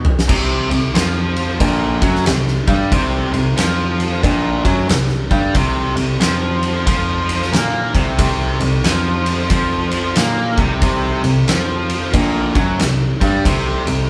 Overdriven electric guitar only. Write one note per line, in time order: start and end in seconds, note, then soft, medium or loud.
0.28 0.69 C3 medium
0.70 0.89 C3 medium
0.94 1.59 F3 medium
1.60 2.00 A#2 loud
2.02 2.25 F#3 loud
2.27 2.60 C3 medium
2.68 2.91 G3 loud
2.91 3.32 C3 loud
3.33 3.53 C3 medium
3.57 4.22 F3 medium
4.23 4.64 A#2 loud
4.65 4.88 F#3 loud
4.89 5.23 C3 medium
5.31 5.54 G3 loud
5.56 5.95 C3 loud
5.96 6.16 C3 medium
6.20 6.85 F3 loud
6.86 7.52 F3 loud
7.52 7.93 A#3 loud
7.95 8.18 C3 loud
8.19 8.59 C3 medium
8.60 8.80 C3 medium
8.84 9.49 F3 medium
9.50 10.15 F3 loud
10.17 10.57 A#3 loud
10.59 10.82 C3 loud
10.83 11.23 C3 loud
11.24 11.43 C3 medium
11.49 12.13 F3 medium
12.14 12.55 A#2 loud
12.56 12.79 F#3 loud
12.80 13.13 C3 medium
13.21 13.45 G3 loud
13.45 13.85 C3 loud
13.87 14.06 C3 medium